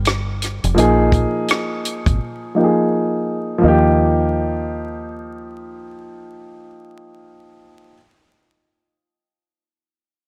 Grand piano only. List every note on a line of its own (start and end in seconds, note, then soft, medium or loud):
0.00 0.72 G3 medium
0.00 0.73 C4 medium
0.00 0.73 F4 medium
0.00 0.74 A#4 medium
0.74 2.51 F3 medium
0.74 2.52 A#3 medium
0.74 2.53 D#4 medium
0.79 2.53 G#4 medium
2.55 3.57 F3 soft
2.55 3.60 A#3 soft
2.55 3.63 D#4 soft
2.55 2.65 G4 soft
2.64 3.67 G#4 medium
3.58 7.92 F3 medium
3.58 7.94 A#3 medium
3.65 7.96 D#4 medium
3.65 7.97 G4 medium